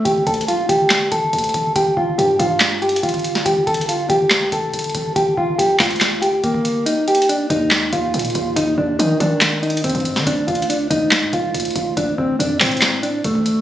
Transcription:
<<
  \new Staff \with { instrumentName = "Clean electric guitar" } { \time 4/4 \key g \minor \tempo 4 = 141 g'8 a'8 f'8 g'4 a'4. | g'8 f'8 g'8 f'4 g'8 f'4 | g'8 a'8 f'8 g'4 a'4. | g'8 f'8 g'8 f'4 g'8 bes4 |
ees'8 g'8 d'8 ees'4 f'4. | ees'8 d'8 ees'8 d'4 ees'8 c'4 | d'8 f'8 d'8 ees'4 f'4. | d'8 c'8 d'8 c'4 d'8 a4 | }
  \new Staff \with { instrumentName = "808-style bass" } { \clef bass \time 4/4 \key g \minor g,,8 d,8 bes,,8 g,,4 g,,8 d,8 g,,8 | g,,8 g,,8 g,8 g,4. g,,4 | g,,8 g,,4 g,,8. d,16 f,,8 g,,8 g,,8 | g,,8 g,,8 bes,,8 d,4. g,,4 |
r4. ees,4 ees,8 bes,8 ees,8 | ees,8 ees,8 ees8 ees4. ees,16 g,8 ees16 | d,8 d,4 d,8. a,16 c,8 d,8 d,8 | d,8 d,8 f,8 a,4. d,4 | }
  \new DrumStaff \with { instrumentName = "Drums" } \drummode { \time 4/4 \tuplet 3/2 { <hh bd>16 r16 r16 <hh bd>16 hh16 hh16 } hh8 <hh bd>8 <hc sn>8 <hh bd>8 hh32 hh32 hh32 hh32 <hh bd>8 | <hh bd>8 bd8 hh8 <hh bd>8 \tuplet 3/2 { <hc hh sn>16 r16 r16 hh16 hh16 hh16 } <hh bd>32 hh32 <hh bd>32 hh32 hh16 sn16 | \tuplet 3/2 { <hh bd>16 r16 r16 <hh bd>16 hh16 hh16 } hh8 <hh bd>8 <hc sn>8 <hh bd>8 hh32 hh32 hh32 hh32 <hh bd>8 | <hh bd>8 bd8 hh8 <hc hh hho bd sn>32 hh32 hh32 hh32 <hc hh sn>8 hh8 <hh bd>16 bd16 hh8 |
\tuplet 3/2 { hh16 r16 r16 hh16 hh16 hh16 } hh8 <hh bd>8 <hc sn>8 <hh bd>8 hh32 hh32 hh32 hh32 <hh bd>8 | <hh bd>8 bd8 hh8 <hh bd>8 \tuplet 3/2 { <hc hh sn>16 r16 r16 hh16 hh16 hh16 } <hh bd>32 hh32 <hh bd>32 hh32 hh16 sn16 | \tuplet 3/2 { <hh bd>16 r16 r16 <hh bd>16 hh16 hh16 } hh8 <hh bd>8 <hc sn>8 <hh bd>8 hh32 hh32 hh32 hh32 <hh bd>8 | <hh bd>8 bd8 hh8 <hc hh hho bd sn>32 hh32 hh32 hh32 <hc hh sn>8 hh8 <hh bd>16 bd16 hh8 | }
>>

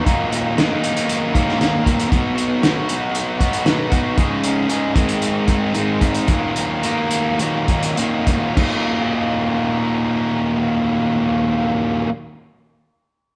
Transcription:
<<
  \new Staff \with { instrumentName = "Distorted electric guitar" } { \time 4/4 \key ees \minor \tempo 4 = 111 <ees, bes, ees ges bes ees'>8 <ees ges bes ees'>8 <ees ges bes ees'>4. <ees ges bes ees'>8 <ees, bes, ees ges bes ees'>8 <ees ges bes ees'>8 | <b, fis b dis' fis'>8 <b dis' fis'>8 <fis b dis' fis'>4. <b dis' fis'>8 <b, fis b dis' fis'>8 <b dis' fis'>8 | <des aes des' ees' aes'>8 <des' ees' aes'>8 <aes des' ees' aes'>8 <aes, ees aes c' ees'>4 <aes c' ees'>8 <aes, ees aes c' ees'>8 <aes c' ees'>8 | <ees, bes, ees ges bes ees'>8 <ees ges bes ees'>8 <ees ges bes ees'>4 <ees, bes, ees ges bes ees'>8 <ees ges bes ees'>8 <ees, bes, ees ges bes ees'>8 <ees ges bes ees'>8 |
<ees, bes, ees ges bes ees'>1~ | <ees, bes, ees ges bes ees'>1 | }
  \new DrumStaff \with { instrumentName = "Drums" } \drummode { \time 4/4 <hh bd>8 hh8 <hh sn>8 hh16 hh16 hh8 <hh bd>16 sn16 <hh sn>8 <hh bd>16 hh16 | <hh bd>8 hh8 <hh sn>8 hh8 hh8 <hh bd>16 hh16 <hh sn>8 <hh bd>8 | <hh bd>8 hh8 hh8 <hh bd>16 hh16 hh8 <hh bd>8 hh8 <hh bd>16 hh16 | <hh bd>8 hh8 hh8 hh8 hh8 <hh bd>16 hh16 hh8 <hh bd>8 |
<cymc bd>4 r4 r4 r4 | r4 r4 r4 r4 | }
>>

